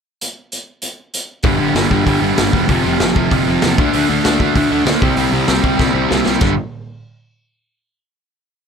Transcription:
0.21 closed hi-hat
0.52 closed hi-hat
0.82 closed hi-hat
1.14 closed hi-hat
1.43 picked electric bass G1, overdriven electric guitar G2 D3 G3, kick, open hi-hat
1.59 picked electric bass G1, overdriven electric guitar G2 D3 G3
1.75 picked electric bass G1, overdriven electric guitar G2 D3 G3, snare, open hi-hat
1.90 picked electric bass G1, overdriven electric guitar G2 D3 G3, kick
2.07 picked electric bass G1, overdriven electric guitar G2 D3 G3, kick, open hi-hat
2.22 picked electric bass G1, overdriven electric guitar G2 D3 G3
2.35 picked electric bass G1, overdriven electric guitar G2, distorted electric guitar D3 G3, snare, open hi-hat
2.40 overdriven electric guitar D3 G3
2.53 picked electric bass E1, overdriven electric guitar G2 D3 G3, kick
2.67 picked electric bass F1, distorted electric guitar F2 C3 F3, kick, open hi-hat
2.71 overdriven electric guitar F2 C3 F3
2.82 picked electric bass F1, distorted electric guitar F3
2.86 overdriven electric guitar F2 C3 F3
3.00 picked electric bass F1, overdriven electric guitar F2 C3 F3, snare, open hi-hat
3.15 picked electric bass F1, overdriven electric guitar F2 C3 F3, kick
3.30 picked electric bass F1, overdriven electric guitar F2 C3 F3, kick, open hi-hat
3.46 picked electric bass F1, overdriven electric guitar F2 C3 F3
3.62 picked electric bass E2, overdriven electric guitar F2 C3 F3, snare, open hi-hat
3.78 picked electric bass D2, overdriven electric guitar D3 A3 D4, kick
3.93 picked electric bass D2, overdriven electric guitar D3 A3 D4, open hi-hat
4.09 picked electric bass D2, overdriven electric guitar D3 A3 D4
4.24 picked electric bass D2, overdriven electric guitar D3 A3 D4, snare, open hi-hat
4.40 picked electric bass D2, overdriven electric guitar D3 A3 D4, kick
4.55 picked electric bass D2, overdriven electric guitar D3 A3 D4, kick, open hi-hat
4.71 picked electric bass D2, overdriven electric guitar D3 A3 D4
4.86 picked electric bass D2, overdriven electric guitar D3 A3 D4, snare, open hi-hat
5.02 picked electric bass C2, overdriven electric guitar C3 G3 C4, kick
5.17 picked electric bass C2, overdriven electric guitar C3 G3 C4, open hi-hat
5.33 picked electric bass C2, overdriven electric guitar C3 G3 C4
5.48 picked electric bass C2, overdriven electric guitar C3 G3 C4, snare, open hi-hat
5.63 picked electric bass C2, overdriven electric guitar C3 G3 C4, kick
5.77 picked electric bass C2, overdriven electric guitar C3 G3 C4, kick, snare
5.93 picked electric bass C2, overdriven electric guitar C3 G3 C4
6.09 picked electric bass C2, overdriven electric guitar C3 G3 C4, snare
6.25 picked electric bass C2, overdriven electric guitar C3 G3 C4, snare
6.39 picked electric bass G1, overdriven electric guitar G2 D3 G3, kick, crash

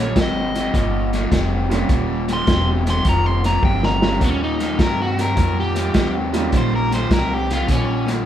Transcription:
Already playing: upright bass A#1, overdriven electric guitar D#2 A#2 C#5, upright piano G3 A#3 C#4 F4
0.16 upright bass G#1, overdriven electric guitar D#2 C3, kick, snare, closed hi-hat
0.21 overdriven electric guitar D#5
0.55 overdriven electric guitar D#2 C3, snare, closed hi-hat
0.74 upright bass G1, overdriven electric guitar D#2 A#2, kick, snare, closed hi-hat
1.13 overdriven electric guitar D#2 A#2, snare, closed hi-hat
1.31 upright bass F1, overdriven electric guitar D#2 C3, kick, snare, closed hi-hat
1.69 overdriven electric guitar D#2 C3, upright piano G3 A#3 C#4 F4, snare, closed hi-hat
1.89 upright bass D#1, overdriven electric guitar D#2 A#2, kick, snare, closed hi-hat
2.28 overdriven electric guitar D#2 A#2, snare, closed hi-hat
2.33 overdriven electric guitar C6
2.47 upright bass E1, overdriven electric guitar D#2 C3, kick, snare, closed hi-hat
2.86 overdriven electric guitar D#2 C3 C6, snare, closed hi-hat
3.05 upright bass F1, overdriven electric guitar D#2 A#2, kick, snare, closed hi-hat
3.09 overdriven electric guitar A#5
3.26 overdriven electric guitar C6
3.44 overdriven electric guitar D#2 A#2 A#5, snare, closed hi-hat
3.63 upright bass G1, overdriven electric guitar D#2 C3 G5, kick, high tom
3.83 overdriven electric guitar A#5, snare
4.01 upright piano D#2 G3 A#3 C#4 F4, overdriven electric guitar D#2 C3, snare
4.20 overdriven electric guitar D#2 A#2 C#4, upright bass D#2, kick, snare, closed hi-hat
4.43 overdriven electric guitar D#4
4.59 overdriven electric guitar D#2 A#2, snare, closed hi-hat
4.78 overdriven electric guitar D#2 C3, upright bass G2, kick, snare, closed hi-hat
4.83 overdriven electric guitar A#4
5.02 overdriven electric guitar F#4
5.18 overdriven electric guitar D#2 C3 A#4, snare, closed hi-hat
5.36 overdriven electric guitar D#2 A#2, upright bass F2, kick, snare, closed hi-hat
5.60 overdriven electric guitar G4
5.75 overdriven electric guitar D#2 A#2, snare, closed hi-hat
5.94 overdriven electric guitar D#2 C3, upright bass D#2, kick, snare, closed hi-hat
6.32 overdriven electric guitar D#2 C3, upright piano G3 A#3 C#4 D#4 F4, snare, closed hi-hat
6.52 upright bass A#1, overdriven electric guitar D#2 A#2, kick, snare, closed hi-hat
6.57 overdriven electric guitar C5
6.76 overdriven electric guitar A#4
6.91 overdriven electric guitar D#2 A#2 C5, snare, closed hi-hat
7.10 upright bass C2, overdriven electric guitar D#2 C3 A#4, kick, snare, closed hi-hat
7.34 overdriven electric guitar G4
7.50 overdriven electric guitar D#2 C3 F4, snare, closed hi-hat
7.68 upright bass A#1, overdriven electric guitar D#2 A#2 C#4, kick, snare, closed hi-hat
8.07 overdriven electric guitar D#2 A#2, snare, closed hi-hat

